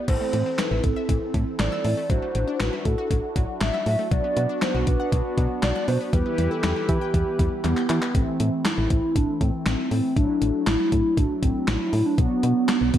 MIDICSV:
0, 0, Header, 1, 7, 480
1, 0, Start_track
1, 0, Tempo, 504202
1, 78, Time_signature, 4, 2, 24, 8
1, 12359, End_track
2, 0, Start_track
2, 0, Title_t, "Analog synth pad"
2, 0, Program_c, 0, 89
2, 3918, Note_on_c, 0, 59, 82
2, 3918, Note_on_c, 0, 62, 74
2, 3918, Note_on_c, 0, 66, 88
2, 5819, Note_off_c, 0, 59, 0
2, 5819, Note_off_c, 0, 62, 0
2, 5819, Note_off_c, 0, 66, 0
2, 5838, Note_on_c, 0, 52, 84
2, 5838, Note_on_c, 0, 64, 73
2, 5838, Note_on_c, 0, 67, 74
2, 5838, Note_on_c, 0, 71, 91
2, 7739, Note_off_c, 0, 52, 0
2, 7739, Note_off_c, 0, 64, 0
2, 7739, Note_off_c, 0, 67, 0
2, 7739, Note_off_c, 0, 71, 0
2, 12359, End_track
3, 0, Start_track
3, 0, Title_t, "Soft synth lead"
3, 0, Program_c, 1, 80
3, 79, Note_on_c, 1, 72, 114
3, 558, Note_on_c, 1, 71, 97
3, 573, Note_off_c, 1, 72, 0
3, 798, Note_on_c, 1, 69, 88
3, 812, Note_off_c, 1, 71, 0
3, 1278, Note_off_c, 1, 69, 0
3, 1517, Note_on_c, 1, 74, 117
3, 1996, Note_on_c, 1, 72, 115
3, 2011, Note_off_c, 1, 74, 0
3, 2477, Note_on_c, 1, 71, 97
3, 2491, Note_off_c, 1, 72, 0
3, 2717, Note_on_c, 1, 69, 90
3, 2732, Note_off_c, 1, 71, 0
3, 3198, Note_off_c, 1, 69, 0
3, 3439, Note_on_c, 1, 76, 115
3, 3885, Note_off_c, 1, 76, 0
3, 3918, Note_on_c, 1, 74, 113
3, 4364, Note_off_c, 1, 74, 0
3, 4397, Note_on_c, 1, 72, 94
3, 4621, Note_off_c, 1, 72, 0
3, 4638, Note_on_c, 1, 71, 86
3, 5084, Note_off_c, 1, 71, 0
3, 5359, Note_on_c, 1, 74, 116
3, 5582, Note_off_c, 1, 74, 0
3, 5597, Note_on_c, 1, 72, 100
3, 5706, Note_off_c, 1, 72, 0
3, 5838, Note_on_c, 1, 71, 112
3, 6197, Note_on_c, 1, 69, 104
3, 6212, Note_off_c, 1, 71, 0
3, 6557, Note_on_c, 1, 67, 91
3, 6571, Note_off_c, 1, 69, 0
3, 7272, Note_off_c, 1, 67, 0
3, 7278, Note_on_c, 1, 59, 108
3, 7501, Note_off_c, 1, 59, 0
3, 7518, Note_on_c, 1, 59, 104
3, 7759, Note_on_c, 1, 60, 122
3, 7773, Note_off_c, 1, 59, 0
3, 8233, Note_off_c, 1, 60, 0
3, 8239, Note_on_c, 1, 64, 110
3, 8461, Note_off_c, 1, 64, 0
3, 8478, Note_on_c, 1, 64, 112
3, 8719, Note_on_c, 1, 62, 117
3, 8733, Note_off_c, 1, 64, 0
3, 8953, Note_off_c, 1, 62, 0
3, 8958, Note_on_c, 1, 60, 107
3, 9181, Note_off_c, 1, 60, 0
3, 9198, Note_on_c, 1, 60, 111
3, 9421, Note_off_c, 1, 60, 0
3, 9437, Note_on_c, 1, 60, 107
3, 9661, Note_off_c, 1, 60, 0
3, 9678, Note_on_c, 1, 62, 118
3, 10124, Note_off_c, 1, 62, 0
3, 10158, Note_on_c, 1, 64, 112
3, 10381, Note_off_c, 1, 64, 0
3, 10399, Note_on_c, 1, 64, 110
3, 10639, Note_on_c, 1, 62, 114
3, 10653, Note_off_c, 1, 64, 0
3, 10874, Note_off_c, 1, 62, 0
3, 10880, Note_on_c, 1, 60, 105
3, 11120, Note_on_c, 1, 64, 116
3, 11134, Note_off_c, 1, 60, 0
3, 11480, Note_on_c, 1, 62, 98
3, 11494, Note_off_c, 1, 64, 0
3, 11593, Note_off_c, 1, 62, 0
3, 11599, Note_on_c, 1, 59, 115
3, 12280, Note_off_c, 1, 59, 0
3, 12319, Note_on_c, 1, 59, 114
3, 12359, Note_off_c, 1, 59, 0
3, 12359, End_track
4, 0, Start_track
4, 0, Title_t, "Analog polysynth"
4, 0, Program_c, 2, 90
4, 78, Note_on_c, 2, 60, 71
4, 78, Note_on_c, 2, 64, 62
4, 78, Note_on_c, 2, 69, 75
4, 1960, Note_off_c, 2, 60, 0
4, 1960, Note_off_c, 2, 64, 0
4, 1960, Note_off_c, 2, 69, 0
4, 1997, Note_on_c, 2, 62, 69
4, 1997, Note_on_c, 2, 64, 65
4, 1997, Note_on_c, 2, 66, 77
4, 3879, Note_off_c, 2, 62, 0
4, 3879, Note_off_c, 2, 64, 0
4, 3879, Note_off_c, 2, 66, 0
4, 3916, Note_on_c, 2, 59, 70
4, 3916, Note_on_c, 2, 62, 65
4, 3917, Note_on_c, 2, 66, 76
4, 5799, Note_off_c, 2, 59, 0
4, 5799, Note_off_c, 2, 62, 0
4, 5799, Note_off_c, 2, 66, 0
4, 5837, Note_on_c, 2, 59, 69
4, 5837, Note_on_c, 2, 64, 66
4, 5837, Note_on_c, 2, 67, 78
4, 7719, Note_off_c, 2, 59, 0
4, 7719, Note_off_c, 2, 64, 0
4, 7719, Note_off_c, 2, 67, 0
4, 7757, Note_on_c, 2, 60, 64
4, 7758, Note_on_c, 2, 52, 69
4, 7758, Note_on_c, 2, 57, 62
4, 7758, Note_on_c, 2, 64, 75
4, 9640, Note_off_c, 2, 52, 0
4, 9640, Note_off_c, 2, 57, 0
4, 9640, Note_off_c, 2, 60, 0
4, 9640, Note_off_c, 2, 64, 0
4, 9677, Note_on_c, 2, 54, 71
4, 9677, Note_on_c, 2, 62, 64
4, 9677, Note_on_c, 2, 64, 78
4, 9678, Note_on_c, 2, 57, 64
4, 11559, Note_off_c, 2, 54, 0
4, 11559, Note_off_c, 2, 62, 0
4, 11559, Note_off_c, 2, 64, 0
4, 11560, Note_off_c, 2, 57, 0
4, 11597, Note_on_c, 2, 59, 63
4, 11597, Note_on_c, 2, 62, 64
4, 11598, Note_on_c, 2, 54, 68
4, 11598, Note_on_c, 2, 66, 76
4, 12359, Note_off_c, 2, 54, 0
4, 12359, Note_off_c, 2, 59, 0
4, 12359, Note_off_c, 2, 62, 0
4, 12359, Note_off_c, 2, 66, 0
4, 12359, End_track
5, 0, Start_track
5, 0, Title_t, "Synth arpeggio sound"
5, 0, Program_c, 3, 84
5, 78, Note_on_c, 3, 52, 89
5, 183, Note_off_c, 3, 52, 0
5, 199, Note_on_c, 3, 57, 76
5, 303, Note_off_c, 3, 57, 0
5, 318, Note_on_c, 3, 52, 72
5, 423, Note_off_c, 3, 52, 0
5, 438, Note_on_c, 3, 60, 94
5, 543, Note_off_c, 3, 60, 0
5, 558, Note_on_c, 3, 52, 71
5, 663, Note_off_c, 3, 52, 0
5, 678, Note_on_c, 3, 64, 84
5, 783, Note_off_c, 3, 64, 0
5, 918, Note_on_c, 3, 76, 86
5, 1023, Note_off_c, 3, 76, 0
5, 1038, Note_on_c, 3, 52, 73
5, 1143, Note_off_c, 3, 52, 0
5, 1277, Note_on_c, 3, 52, 75
5, 1382, Note_off_c, 3, 52, 0
5, 1517, Note_on_c, 3, 52, 84
5, 1622, Note_off_c, 3, 52, 0
5, 1638, Note_on_c, 3, 88, 89
5, 1743, Note_off_c, 3, 88, 0
5, 1757, Note_on_c, 3, 52, 76
5, 1862, Note_off_c, 3, 52, 0
5, 1877, Note_on_c, 3, 57, 91
5, 1982, Note_off_c, 3, 57, 0
5, 1997, Note_on_c, 3, 54, 91
5, 2102, Note_off_c, 3, 54, 0
5, 2117, Note_on_c, 3, 57, 78
5, 2222, Note_off_c, 3, 57, 0
5, 2237, Note_on_c, 3, 54, 76
5, 2342, Note_off_c, 3, 54, 0
5, 2357, Note_on_c, 3, 62, 95
5, 2462, Note_off_c, 3, 62, 0
5, 2477, Note_on_c, 3, 54, 70
5, 2582, Note_off_c, 3, 54, 0
5, 2598, Note_on_c, 3, 64, 84
5, 2703, Note_off_c, 3, 64, 0
5, 2838, Note_on_c, 3, 66, 90
5, 2943, Note_off_c, 3, 66, 0
5, 2958, Note_on_c, 3, 54, 72
5, 3063, Note_off_c, 3, 54, 0
5, 3197, Note_on_c, 3, 54, 76
5, 3302, Note_off_c, 3, 54, 0
5, 3437, Note_on_c, 3, 54, 85
5, 3542, Note_off_c, 3, 54, 0
5, 3557, Note_on_c, 3, 76, 88
5, 3662, Note_off_c, 3, 76, 0
5, 3677, Note_on_c, 3, 54, 76
5, 3782, Note_off_c, 3, 54, 0
5, 3797, Note_on_c, 3, 57, 90
5, 3902, Note_off_c, 3, 57, 0
5, 3917, Note_on_c, 3, 54, 91
5, 4022, Note_off_c, 3, 54, 0
5, 4037, Note_on_c, 3, 59, 75
5, 4142, Note_off_c, 3, 59, 0
5, 4157, Note_on_c, 3, 54, 74
5, 4262, Note_off_c, 3, 54, 0
5, 4277, Note_on_c, 3, 62, 96
5, 4383, Note_off_c, 3, 62, 0
5, 4397, Note_on_c, 3, 54, 73
5, 4502, Note_off_c, 3, 54, 0
5, 4518, Note_on_c, 3, 66, 84
5, 4623, Note_off_c, 3, 66, 0
5, 4757, Note_on_c, 3, 78, 88
5, 4862, Note_off_c, 3, 78, 0
5, 4878, Note_on_c, 3, 54, 72
5, 4983, Note_off_c, 3, 54, 0
5, 5117, Note_on_c, 3, 54, 77
5, 5222, Note_off_c, 3, 54, 0
5, 5358, Note_on_c, 3, 54, 85
5, 5463, Note_off_c, 3, 54, 0
5, 5478, Note_on_c, 3, 90, 86
5, 5583, Note_off_c, 3, 90, 0
5, 5598, Note_on_c, 3, 54, 75
5, 5703, Note_off_c, 3, 54, 0
5, 5718, Note_on_c, 3, 59, 94
5, 5823, Note_off_c, 3, 59, 0
5, 5838, Note_on_c, 3, 55, 90
5, 5943, Note_off_c, 3, 55, 0
5, 5958, Note_on_c, 3, 59, 77
5, 6063, Note_off_c, 3, 59, 0
5, 6078, Note_on_c, 3, 55, 75
5, 6183, Note_off_c, 3, 55, 0
5, 6198, Note_on_c, 3, 64, 93
5, 6303, Note_off_c, 3, 64, 0
5, 6318, Note_on_c, 3, 55, 75
5, 6423, Note_off_c, 3, 55, 0
5, 6438, Note_on_c, 3, 67, 85
5, 6543, Note_off_c, 3, 67, 0
5, 6677, Note_on_c, 3, 79, 87
5, 6782, Note_off_c, 3, 79, 0
5, 6798, Note_on_c, 3, 55, 72
5, 6903, Note_off_c, 3, 55, 0
5, 7037, Note_on_c, 3, 55, 77
5, 7142, Note_off_c, 3, 55, 0
5, 7278, Note_on_c, 3, 55, 88
5, 7383, Note_off_c, 3, 55, 0
5, 7398, Note_on_c, 3, 91, 88
5, 7503, Note_off_c, 3, 91, 0
5, 7518, Note_on_c, 3, 55, 76
5, 7623, Note_off_c, 3, 55, 0
5, 7637, Note_on_c, 3, 59, 93
5, 7742, Note_off_c, 3, 59, 0
5, 12359, End_track
6, 0, Start_track
6, 0, Title_t, "FM bass"
6, 0, Program_c, 4, 39
6, 77, Note_on_c, 4, 33, 109
6, 171, Note_off_c, 4, 33, 0
6, 318, Note_on_c, 4, 45, 99
6, 412, Note_off_c, 4, 45, 0
6, 678, Note_on_c, 4, 33, 94
6, 772, Note_off_c, 4, 33, 0
6, 798, Note_on_c, 4, 33, 101
6, 892, Note_off_c, 4, 33, 0
6, 1037, Note_on_c, 4, 33, 105
6, 1131, Note_off_c, 4, 33, 0
6, 1278, Note_on_c, 4, 45, 108
6, 1372, Note_off_c, 4, 45, 0
6, 1517, Note_on_c, 4, 33, 106
6, 1611, Note_off_c, 4, 33, 0
6, 1758, Note_on_c, 4, 45, 99
6, 1852, Note_off_c, 4, 45, 0
6, 1997, Note_on_c, 4, 33, 110
6, 2091, Note_off_c, 4, 33, 0
6, 2238, Note_on_c, 4, 33, 107
6, 2332, Note_off_c, 4, 33, 0
6, 2478, Note_on_c, 4, 33, 101
6, 2572, Note_off_c, 4, 33, 0
6, 2718, Note_on_c, 4, 45, 96
6, 2812, Note_off_c, 4, 45, 0
6, 2957, Note_on_c, 4, 33, 108
6, 3051, Note_off_c, 4, 33, 0
6, 3198, Note_on_c, 4, 33, 105
6, 3292, Note_off_c, 4, 33, 0
6, 3438, Note_on_c, 4, 33, 104
6, 3532, Note_off_c, 4, 33, 0
6, 3677, Note_on_c, 4, 45, 103
6, 3771, Note_off_c, 4, 45, 0
6, 3917, Note_on_c, 4, 35, 107
6, 4011, Note_off_c, 4, 35, 0
6, 4158, Note_on_c, 4, 47, 106
6, 4252, Note_off_c, 4, 47, 0
6, 4518, Note_on_c, 4, 35, 93
6, 4612, Note_off_c, 4, 35, 0
6, 4638, Note_on_c, 4, 35, 97
6, 4732, Note_off_c, 4, 35, 0
6, 4877, Note_on_c, 4, 35, 113
6, 4971, Note_off_c, 4, 35, 0
6, 5117, Note_on_c, 4, 47, 97
6, 5211, Note_off_c, 4, 47, 0
6, 5358, Note_on_c, 4, 35, 101
6, 5452, Note_off_c, 4, 35, 0
6, 5598, Note_on_c, 4, 47, 104
6, 5692, Note_off_c, 4, 47, 0
6, 5837, Note_on_c, 4, 40, 109
6, 5931, Note_off_c, 4, 40, 0
6, 6078, Note_on_c, 4, 40, 102
6, 6172, Note_off_c, 4, 40, 0
6, 6318, Note_on_c, 4, 40, 107
6, 6412, Note_off_c, 4, 40, 0
6, 6558, Note_on_c, 4, 52, 106
6, 6652, Note_off_c, 4, 52, 0
6, 6797, Note_on_c, 4, 40, 112
6, 6891, Note_off_c, 4, 40, 0
6, 7038, Note_on_c, 4, 40, 106
6, 7132, Note_off_c, 4, 40, 0
6, 7278, Note_on_c, 4, 40, 104
6, 7372, Note_off_c, 4, 40, 0
6, 7518, Note_on_c, 4, 52, 106
6, 7612, Note_off_c, 4, 52, 0
6, 7757, Note_on_c, 4, 33, 115
6, 7851, Note_off_c, 4, 33, 0
6, 7998, Note_on_c, 4, 45, 100
6, 8092, Note_off_c, 4, 45, 0
6, 8358, Note_on_c, 4, 33, 94
6, 8452, Note_off_c, 4, 33, 0
6, 8478, Note_on_c, 4, 33, 101
6, 8572, Note_off_c, 4, 33, 0
6, 8718, Note_on_c, 4, 33, 106
6, 8812, Note_off_c, 4, 33, 0
6, 8958, Note_on_c, 4, 45, 108
6, 9052, Note_off_c, 4, 45, 0
6, 9197, Note_on_c, 4, 33, 107
6, 9291, Note_off_c, 4, 33, 0
6, 9437, Note_on_c, 4, 45, 98
6, 9531, Note_off_c, 4, 45, 0
6, 9677, Note_on_c, 4, 33, 108
6, 9771, Note_off_c, 4, 33, 0
6, 9918, Note_on_c, 4, 33, 105
6, 10012, Note_off_c, 4, 33, 0
6, 10158, Note_on_c, 4, 33, 106
6, 10252, Note_off_c, 4, 33, 0
6, 10399, Note_on_c, 4, 45, 98
6, 10492, Note_off_c, 4, 45, 0
6, 10637, Note_on_c, 4, 33, 111
6, 10731, Note_off_c, 4, 33, 0
6, 10878, Note_on_c, 4, 33, 106
6, 10972, Note_off_c, 4, 33, 0
6, 11117, Note_on_c, 4, 33, 102
6, 11211, Note_off_c, 4, 33, 0
6, 11357, Note_on_c, 4, 45, 106
6, 11451, Note_off_c, 4, 45, 0
6, 11597, Note_on_c, 4, 35, 113
6, 11691, Note_off_c, 4, 35, 0
6, 11837, Note_on_c, 4, 47, 107
6, 11931, Note_off_c, 4, 47, 0
6, 12198, Note_on_c, 4, 35, 97
6, 12292, Note_off_c, 4, 35, 0
6, 12318, Note_on_c, 4, 35, 97
6, 12359, Note_off_c, 4, 35, 0
6, 12359, End_track
7, 0, Start_track
7, 0, Title_t, "Drums"
7, 77, Note_on_c, 9, 36, 123
7, 77, Note_on_c, 9, 42, 66
7, 77, Note_on_c, 9, 49, 100
7, 172, Note_off_c, 9, 42, 0
7, 172, Note_off_c, 9, 49, 0
7, 173, Note_off_c, 9, 36, 0
7, 315, Note_on_c, 9, 42, 74
7, 411, Note_off_c, 9, 42, 0
7, 557, Note_on_c, 9, 38, 110
7, 557, Note_on_c, 9, 39, 93
7, 560, Note_on_c, 9, 42, 75
7, 652, Note_off_c, 9, 38, 0
7, 652, Note_off_c, 9, 39, 0
7, 655, Note_off_c, 9, 42, 0
7, 796, Note_on_c, 9, 42, 76
7, 798, Note_on_c, 9, 36, 90
7, 891, Note_off_c, 9, 42, 0
7, 894, Note_off_c, 9, 36, 0
7, 1037, Note_on_c, 9, 36, 90
7, 1038, Note_on_c, 9, 42, 74
7, 1133, Note_off_c, 9, 36, 0
7, 1133, Note_off_c, 9, 42, 0
7, 1277, Note_on_c, 9, 42, 77
7, 1278, Note_on_c, 9, 36, 90
7, 1373, Note_off_c, 9, 36, 0
7, 1373, Note_off_c, 9, 42, 0
7, 1516, Note_on_c, 9, 42, 64
7, 1517, Note_on_c, 9, 38, 106
7, 1517, Note_on_c, 9, 39, 87
7, 1612, Note_off_c, 9, 42, 0
7, 1613, Note_off_c, 9, 38, 0
7, 1613, Note_off_c, 9, 39, 0
7, 1756, Note_on_c, 9, 46, 74
7, 1852, Note_off_c, 9, 46, 0
7, 1997, Note_on_c, 9, 36, 120
7, 1997, Note_on_c, 9, 42, 66
7, 2092, Note_off_c, 9, 36, 0
7, 2092, Note_off_c, 9, 42, 0
7, 2236, Note_on_c, 9, 42, 72
7, 2331, Note_off_c, 9, 42, 0
7, 2477, Note_on_c, 9, 38, 116
7, 2477, Note_on_c, 9, 39, 91
7, 2479, Note_on_c, 9, 42, 75
7, 2572, Note_off_c, 9, 38, 0
7, 2572, Note_off_c, 9, 39, 0
7, 2575, Note_off_c, 9, 42, 0
7, 2716, Note_on_c, 9, 42, 73
7, 2718, Note_on_c, 9, 36, 87
7, 2811, Note_off_c, 9, 42, 0
7, 2813, Note_off_c, 9, 36, 0
7, 2957, Note_on_c, 9, 36, 93
7, 2958, Note_on_c, 9, 42, 74
7, 3052, Note_off_c, 9, 36, 0
7, 3053, Note_off_c, 9, 42, 0
7, 3197, Note_on_c, 9, 36, 87
7, 3197, Note_on_c, 9, 42, 75
7, 3292, Note_off_c, 9, 42, 0
7, 3293, Note_off_c, 9, 36, 0
7, 3436, Note_on_c, 9, 42, 64
7, 3437, Note_on_c, 9, 38, 107
7, 3437, Note_on_c, 9, 39, 86
7, 3532, Note_off_c, 9, 42, 0
7, 3533, Note_off_c, 9, 38, 0
7, 3533, Note_off_c, 9, 39, 0
7, 3677, Note_on_c, 9, 46, 74
7, 3772, Note_off_c, 9, 46, 0
7, 3917, Note_on_c, 9, 36, 126
7, 3917, Note_on_c, 9, 42, 68
7, 4012, Note_off_c, 9, 36, 0
7, 4012, Note_off_c, 9, 42, 0
7, 4156, Note_on_c, 9, 42, 74
7, 4252, Note_off_c, 9, 42, 0
7, 4397, Note_on_c, 9, 38, 117
7, 4397, Note_on_c, 9, 39, 96
7, 4400, Note_on_c, 9, 42, 76
7, 4492, Note_off_c, 9, 38, 0
7, 4492, Note_off_c, 9, 39, 0
7, 4495, Note_off_c, 9, 42, 0
7, 4636, Note_on_c, 9, 42, 77
7, 4638, Note_on_c, 9, 36, 92
7, 4731, Note_off_c, 9, 42, 0
7, 4733, Note_off_c, 9, 36, 0
7, 4877, Note_on_c, 9, 36, 93
7, 4878, Note_on_c, 9, 42, 75
7, 4973, Note_off_c, 9, 36, 0
7, 4973, Note_off_c, 9, 42, 0
7, 5118, Note_on_c, 9, 36, 92
7, 5118, Note_on_c, 9, 42, 74
7, 5213, Note_off_c, 9, 36, 0
7, 5213, Note_off_c, 9, 42, 0
7, 5357, Note_on_c, 9, 42, 63
7, 5358, Note_on_c, 9, 38, 106
7, 5358, Note_on_c, 9, 39, 85
7, 5452, Note_off_c, 9, 42, 0
7, 5453, Note_off_c, 9, 38, 0
7, 5453, Note_off_c, 9, 39, 0
7, 5598, Note_on_c, 9, 46, 71
7, 5693, Note_off_c, 9, 46, 0
7, 5837, Note_on_c, 9, 36, 122
7, 5837, Note_on_c, 9, 42, 70
7, 5932, Note_off_c, 9, 36, 0
7, 5932, Note_off_c, 9, 42, 0
7, 6076, Note_on_c, 9, 42, 74
7, 6171, Note_off_c, 9, 42, 0
7, 6317, Note_on_c, 9, 38, 121
7, 6317, Note_on_c, 9, 39, 98
7, 6320, Note_on_c, 9, 42, 77
7, 6412, Note_off_c, 9, 38, 0
7, 6412, Note_off_c, 9, 39, 0
7, 6415, Note_off_c, 9, 42, 0
7, 6557, Note_on_c, 9, 42, 76
7, 6558, Note_on_c, 9, 36, 91
7, 6652, Note_off_c, 9, 42, 0
7, 6653, Note_off_c, 9, 36, 0
7, 6797, Note_on_c, 9, 36, 97
7, 6798, Note_on_c, 9, 42, 74
7, 6893, Note_off_c, 9, 36, 0
7, 6893, Note_off_c, 9, 42, 0
7, 7038, Note_on_c, 9, 36, 93
7, 7038, Note_on_c, 9, 42, 77
7, 7133, Note_off_c, 9, 36, 0
7, 7133, Note_off_c, 9, 42, 0
7, 7277, Note_on_c, 9, 39, 60
7, 7277, Note_on_c, 9, 42, 66
7, 7372, Note_off_c, 9, 42, 0
7, 7373, Note_off_c, 9, 39, 0
7, 7397, Note_on_c, 9, 39, 67
7, 7492, Note_off_c, 9, 39, 0
7, 7517, Note_on_c, 9, 39, 97
7, 7517, Note_on_c, 9, 42, 78
7, 7612, Note_off_c, 9, 39, 0
7, 7612, Note_off_c, 9, 42, 0
7, 7637, Note_on_c, 9, 39, 94
7, 7732, Note_off_c, 9, 39, 0
7, 7756, Note_on_c, 9, 42, 70
7, 7757, Note_on_c, 9, 36, 123
7, 7851, Note_off_c, 9, 42, 0
7, 7852, Note_off_c, 9, 36, 0
7, 7996, Note_on_c, 9, 42, 76
7, 8091, Note_off_c, 9, 42, 0
7, 8237, Note_on_c, 9, 38, 116
7, 8237, Note_on_c, 9, 39, 94
7, 8239, Note_on_c, 9, 42, 78
7, 8332, Note_off_c, 9, 38, 0
7, 8332, Note_off_c, 9, 39, 0
7, 8335, Note_off_c, 9, 42, 0
7, 8476, Note_on_c, 9, 42, 79
7, 8478, Note_on_c, 9, 36, 90
7, 8571, Note_off_c, 9, 42, 0
7, 8573, Note_off_c, 9, 36, 0
7, 8717, Note_on_c, 9, 36, 91
7, 8718, Note_on_c, 9, 42, 78
7, 8813, Note_off_c, 9, 36, 0
7, 8813, Note_off_c, 9, 42, 0
7, 8958, Note_on_c, 9, 36, 91
7, 8958, Note_on_c, 9, 42, 77
7, 9053, Note_off_c, 9, 36, 0
7, 9053, Note_off_c, 9, 42, 0
7, 9197, Note_on_c, 9, 42, 69
7, 9198, Note_on_c, 9, 38, 109
7, 9198, Note_on_c, 9, 39, 86
7, 9292, Note_off_c, 9, 42, 0
7, 9293, Note_off_c, 9, 38, 0
7, 9293, Note_off_c, 9, 39, 0
7, 9438, Note_on_c, 9, 46, 73
7, 9533, Note_off_c, 9, 46, 0
7, 9677, Note_on_c, 9, 36, 127
7, 9677, Note_on_c, 9, 42, 70
7, 9772, Note_off_c, 9, 36, 0
7, 9773, Note_off_c, 9, 42, 0
7, 9917, Note_on_c, 9, 42, 74
7, 10012, Note_off_c, 9, 42, 0
7, 10157, Note_on_c, 9, 38, 118
7, 10157, Note_on_c, 9, 39, 96
7, 10160, Note_on_c, 9, 42, 80
7, 10252, Note_off_c, 9, 38, 0
7, 10252, Note_off_c, 9, 39, 0
7, 10255, Note_off_c, 9, 42, 0
7, 10398, Note_on_c, 9, 36, 92
7, 10398, Note_on_c, 9, 42, 79
7, 10493, Note_off_c, 9, 42, 0
7, 10494, Note_off_c, 9, 36, 0
7, 10637, Note_on_c, 9, 36, 98
7, 10638, Note_on_c, 9, 42, 75
7, 10733, Note_off_c, 9, 36, 0
7, 10733, Note_off_c, 9, 42, 0
7, 10878, Note_on_c, 9, 36, 93
7, 10878, Note_on_c, 9, 42, 76
7, 10973, Note_off_c, 9, 36, 0
7, 10973, Note_off_c, 9, 42, 0
7, 11116, Note_on_c, 9, 42, 67
7, 11117, Note_on_c, 9, 38, 109
7, 11117, Note_on_c, 9, 39, 92
7, 11211, Note_off_c, 9, 42, 0
7, 11212, Note_off_c, 9, 38, 0
7, 11212, Note_off_c, 9, 39, 0
7, 11357, Note_on_c, 9, 46, 76
7, 11452, Note_off_c, 9, 46, 0
7, 11597, Note_on_c, 9, 36, 127
7, 11597, Note_on_c, 9, 42, 70
7, 11692, Note_off_c, 9, 36, 0
7, 11692, Note_off_c, 9, 42, 0
7, 11836, Note_on_c, 9, 42, 74
7, 11931, Note_off_c, 9, 42, 0
7, 12077, Note_on_c, 9, 38, 117
7, 12077, Note_on_c, 9, 39, 98
7, 12080, Note_on_c, 9, 42, 77
7, 12172, Note_off_c, 9, 38, 0
7, 12172, Note_off_c, 9, 39, 0
7, 12175, Note_off_c, 9, 42, 0
7, 12316, Note_on_c, 9, 42, 81
7, 12318, Note_on_c, 9, 36, 90
7, 12359, Note_off_c, 9, 36, 0
7, 12359, Note_off_c, 9, 42, 0
7, 12359, End_track
0, 0, End_of_file